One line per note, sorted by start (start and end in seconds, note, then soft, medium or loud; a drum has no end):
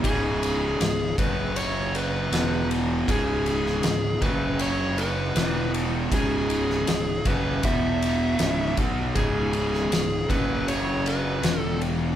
0.03 0.76 C#1 loud
0.03 0.79 C#2 medium
0.03 0.79 G#2 medium
0.03 0.79 C#3 loud
0.03 1.14 G#4 medium
0.03 kick loud
0.03 ride medium
0.43 ride medium
0.80 1.16 C#1 medium
0.80 1.11 C#2 medium
0.80 1.11 G#2 medium
0.80 snare loud
0.80 ride loud
1.18 2.28 F#1 loud
1.18 2.31 F#2 medium
1.18 2.32 C#3 medium
1.18 2.32 F#3 medium
1.18 1.58 B4 medium
1.18 kick loud
1.18 ride medium
1.56 1.96 C#5 loud
1.56 ride medium
1.95 2.67 B4 medium
1.95 ride medium
2.32 3.04 E1 medium
2.32 3.07 E2 medium
2.32 3.07 B2 loud
2.32 3.08 E3 loud
2.32 snare loud
2.32 ride medium
2.71 ride medium
3.08 3.80 C#1 medium
3.08 3.82 C#2 medium
3.08 3.83 G#2 medium
3.08 3.84 C#3 medium
3.08 4.22 G#4 medium
3.08 kick medium
3.08 ride medium
3.46 ride medium
3.66 snare soft
3.83 4.20 C#1 medium
3.83 4.15 C#2 medium
3.83 4.15 G#2 medium
3.83 snare loud
3.83 ride medium
4.21 5.32 F#1 loud
4.21 5.35 F#2 medium
4.21 5.35 C#3 medium
4.21 5.35 F#3 medium
4.21 4.62 B4 medium
4.21 kick loud
4.21 ride medium
4.59 5.00 C#5 loud
4.59 ride medium
4.98 5.71 B4 medium
4.98 ride medium
5.35 6.08 E1 medium
5.35 6.11 E2 loud
5.35 6.11 B2 medium
5.35 6.12 E3 loud
5.35 snare loud
5.35 ride medium
5.74 ride medium
6.11 6.84 C#1 medium
6.11 6.86 C#2 medium
6.11 6.86 G#2 medium
6.11 6.88 C#3 medium
6.11 7.23 G#4 medium
6.11 kick loud
6.11 ride medium
6.50 ride medium
6.70 snare soft
6.87 7.24 C#1 medium
6.87 7.19 C#2 medium
6.87 7.19 G#2 medium
6.87 snare loud
6.87 ride loud
7.25 7.61 F#1 loud
7.25 7.63 F#2 medium
7.25 7.63 C#3 medium
7.25 7.63 F#3 loud
7.25 7.63 B4 medium
7.25 kick loud
7.25 ride medium
7.63 8.36 E1 medium
7.63 8.38 E2 medium
7.63 8.39 B2 loud
7.63 8.39 E3 loud
7.63 8.75 E5 medium
7.63 kick medium
7.63 ride medium
8.02 ride medium
8.39 8.75 C#1 loud
8.39 8.76 C#2 medium
8.39 8.76 G#2 loud
8.39 8.77 C#3 loud
8.39 snare loud
8.39 ride medium
8.76 9.13 B1 medium
8.76 9.14 B2 medium
8.76 9.14 F#3 loud
8.76 9.15 B3 loud
8.76 kick loud
8.76 ride medium
9.15 9.88 C#1 loud
9.15 9.90 C#2 medium
9.15 9.90 G#2 medium
9.15 9.91 C#3 medium
9.15 10.30 G#4 loud
9.15 kick loud
9.15 ride medium
9.53 ride medium
9.74 snare soft
9.91 10.27 C#1 medium
9.91 10.22 C#2 medium
9.91 10.22 G#2 medium
9.91 snare loud
9.91 ride loud
10.28 11.40 F#1 loud
10.28 11.42 F#2 medium
10.28 11.43 C#3 medium
10.28 11.43 F#3 medium
10.28 10.69 B4 medium
10.28 kick loud
10.28 ride medium
10.68 11.07 C#5 loud
10.68 ride medium
11.06 11.60 B4 medium
11.06 ride medium
11.42 12.15 E1 loud
11.42 12.16 E2 medium
11.42 12.16 B2 loud
11.42 12.16 E3 loud
11.42 snare loud
11.42 ride medium
11.60 11.79 A4 medium
11.81 ride medium